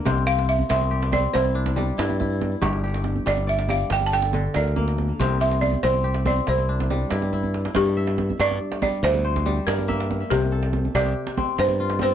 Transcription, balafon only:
0.27 F5
0.49 E5
0.70 E5
1.13 D5
1.34 C5
3.28 D5
3.49 E5
3.70 F5
3.92 G5
4.06 A5
4.13 G5
4.56 D5
5.41 E5
5.61 D5
5.83 C5
6.27 D5
6.49 C5
7.76 G4
8.41 D5
8.82 D5
9.04 C5
9.67 A#4
10.30 G4
10.95 D5
11.59 C5
12.03 C5

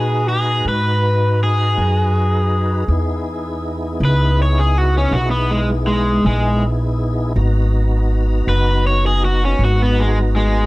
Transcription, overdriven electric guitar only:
Already playing: G#4
0.29 G#4
0.69 B4
1.43 G#4
4.05 B4
4.42 C#5
4.59 G#4
4.78 F#4
4.98 C#4
5.13 F#4
5.31 B3
5.51 G#3
5.87 G#3
6.26 G#3
8.49 B4
8.87 C#5
9.07 G#4
9.25 F#4
9.45 C#4
9.65 F#4
9.83 B3
10.00 G#3
10.36 G#3

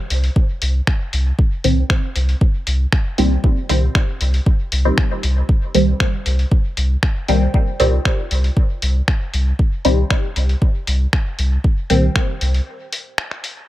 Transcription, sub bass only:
0.10 C2
0.62 C2
1.13 C2
1.64 C2
2.16 C2
2.67 C2
3.18 C2
3.69 C2
4.21 C2
4.72 C2
5.23 C2
5.75 C2
6.26 C2
6.77 C2
7.28 C2
7.80 C2
8.31 C2
8.82 C2
9.34 C2
9.85 C2
10.36 C2
10.87 C2
11.39 C2
11.90 C2
12.41 C2

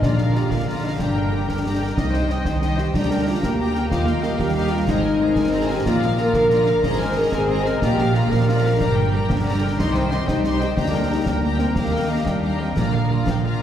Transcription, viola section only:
0.03 F4
0.19 A#4
0.35 F4
0.52 A#4
0.67 F4
0.85 A#4
1.01 G4
1.16 A#4
1.32 G4
1.47 A#4
1.64 G4
1.81 A#4
1.97 D#5
2.13 C5
2.29 D#5
2.44 C5
2.60 D#5
2.78 C5
2.95 G4
3.11 A#4
3.26 G4
3.43 A#4
3.58 G4
3.75 A#4
3.89 G4
4.05 A#4
4.21 G4
4.38 A#4
4.55 G4
4.71 A#4
4.87 G#4
5.02 A#4
5.21 G#4
5.38 A#4
5.53 G#4
5.70 A#4
5.87 F4
6.04 A#4
6.21 F4
6.36 A#4
6.52 F4
6.68 A#4
6.83 G#4
6.99 A#4
7.16 G#4
7.34 A#4
7.49 G#4
7.66 A#4
7.82 F4
7.98 A#4
8.15 F4
8.30 A#4
8.47 F4
8.65 A#4
8.81 G4
8.97 A#4
9.15 G4
9.30 A#4
9.47 G4
9.62 A#4
9.78 G4
9.94 C5
10.10 G4
10.27 C5
10.44 G4
10.60 C5
10.77 G4
10.92 A#4
11.09 G4
11.26 A#4
11.43 G4
11.60 A#4
11.76 G4
11.93 A#4
12.10 G4
12.27 A#4
12.42 G4
12.59 A#4
12.77 F4
12.94 A#4
13.10 F4
13.29 A#4
13.44 F4

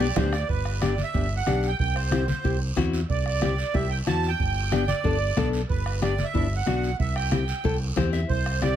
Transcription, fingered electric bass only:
Already playing: B1
0.17 D2
0.49 G1
1.14 G1
1.47 B1
1.79 C2
2.45 C2
2.77 E2
3.10 C2
3.74 C2
4.07 E2
4.40 G1
5.05 G1
5.37 B1
5.70 G1
6.35 G1
6.67 B1
7.00 C2
7.65 C2
7.97 E2
8.30 C2

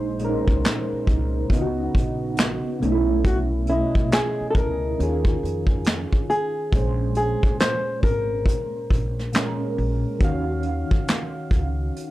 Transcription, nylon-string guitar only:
3.26 F#4
3.70 E4
4.13 G#4
4.50 A4
4.57 A#4
6.30 G#4
7.17 G#4
7.60 C5
8.04 A#4

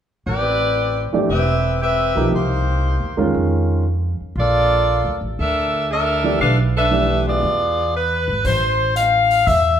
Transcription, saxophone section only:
0.27 C4 G4 B4 D5
1.30 C4 G4 B4 E5
1.82 C4 G4 B4 E5
2.34 A#3 D#4 G4 C5
4.38 A#3 F4 A4 D5
5.39 D4 A4 A#4 E5
5.91 D4 A4 A#4 E5
6.41 D4 A4 B4 F5
6.77 D4 A4 B4 E5
7.27 B3 F4 G#4 D5
7.96 B4
8.46 C5
8.96 F5
9.46 E5

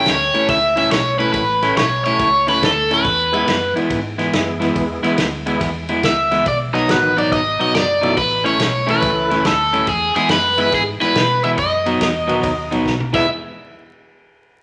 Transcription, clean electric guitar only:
Already playing: A2 A3 C#4 E4
0.34 A2 A3 C#4 E4
0.76 A2 A3 C#4 E4
1.19 A2 A3 C#4 E4
1.63 A2 A3 C#4 E4
2.06 A2 A3 C#4 E4
2.47 A2 A3 C#4 E4
2.91 A2 A3 C#4 E4
3.33 E3 G#3 B3 E4
3.76 E3 G#3 B3 E4
4.18 E3 G#3 B3 E4
4.60 E3 G#3 B3 E4
5.03 E3 G#3 B3 E4
5.46 E3 G#3 B3 E4
5.89 E3 G#3 B3 E4
6.31 E3 G#3 B3 E4
6.73 B2 F#3 B3 D#4
7.17 B2 F#3 B3 D#4
7.59 B2 F#3 B3 D#4
8.01 B2 F#3 B3 D#4
8.44 A2 A3 C#4 E4
8.86 A2 A3 C#4 E4
9.30 A2 A3 C#4 E4
9.73 A2 A3 C#4 E4
10.16 E3 G#3 B3 E4
10.58 E3 G#3 B3 E4
11.00 E3 G#3 B3 E4
11.44 E3 G#3 B3 E4
11.86 B2 F#3 B3 D#4
12.27 B2 F#3 B3 D#4
12.71 B2 F#3 B3 D#4
13.13 E3 G#3 B3 E4

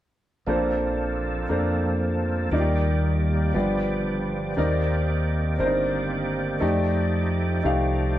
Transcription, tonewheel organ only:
0.47 F3 A#3 C4 D4 A4
2.52 D#3 G3 A#3 G4 D5
3.54 F3 B3 D5
4.58 D#3 A#3 C4
6.61 F3 A3 D#4

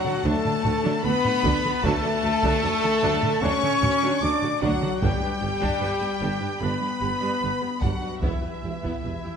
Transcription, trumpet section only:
Already playing: F#4
0.25 A4
1.04 B4
1.84 A4
3.42 C#5
4.22 D5
4.63 F#4
5.03 G4
6.61 B4
7.83 F#4
8.23 E4

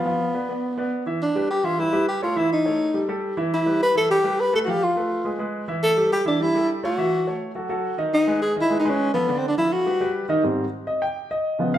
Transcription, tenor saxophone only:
Already playing: B3
1.22 D4
1.51 G4
1.65 F4
1.80 E4
2.08 G4
2.23 F4
2.38 E4
2.53 D#4
3.54 E4
3.83 B4
3.97 A4
4.11 G4
4.40 B4
4.55 A4
4.65 F#4
4.70 G4
4.84 F4
5.83 A4
6.13 G4
6.28 D4
6.42 E4
6.85 F#4
8.14 D#4
8.42 G#4
8.61 E4
8.80 D#4
8.89 C#4
9.14 B3
9.38 C4
9.48 D4
9.58 E4
9.73 F#4

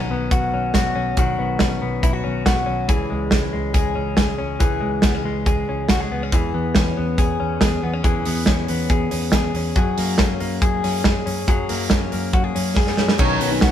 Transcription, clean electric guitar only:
Already playing: D#3 F#4
0.00 C#4
0.11 B3
0.32 F#4
0.54 C#4
0.74 F#4
0.95 C#4
1.18 D#3 F#4
1.39 B3
1.60 C#4
1.82 B3
2.03 E4
2.13 F#4
2.24 C#4
2.46 F#4
2.66 C#4
2.89 E3 G#4
3.10 G#3
3.32 C#4
3.53 G#3
3.74 G#4
3.95 C#4
4.17 G#4
4.38 C#4
4.60 E3 G#4
4.80 G#3
5.03 B3
5.15 C#4
5.25 G#3
5.47 G#4
5.69 C#4
5.90 F#4
6.00 G#4
6.12 B3
6.23 C#4
6.33 E3 G#4
6.54 B3
6.76 C#4
6.97 B3
7.19 G#4
7.40 C#4
7.62 G#4
7.83 B3
7.93 C#4
8.04 E3 G#4
8.26 B3
8.47 C#4
8.69 B3
8.90 G#4
9.11 C#4
9.33 G#4
9.56 C#4
9.77 F#3 G#4
9.99 A#3
10.19 C#4
10.40 A#3
10.62 G#4
10.84 C#4
11.05 G#4
11.26 C#4
11.48 F#3 G#4
11.69 A#3
11.90 C#4
12.12 A#3
12.34 F#4
12.44 G#4
12.55 C#4
12.77 G#4
12.98 C#4
13.19 D#3
13.41 B3
13.63 F#4

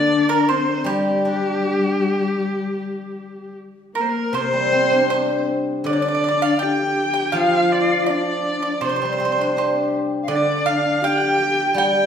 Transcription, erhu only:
Already playing: D5
0.30 A#4
0.49 C5
0.87 G4
3.96 A#4
4.01 C5
4.10 A#4
4.34 C5
5.87 D5
6.63 G5
7.37 F5
7.72 D5
8.11 D5
8.85 C5
10.32 D5
10.67 F5
11.04 G5
11.76 G5

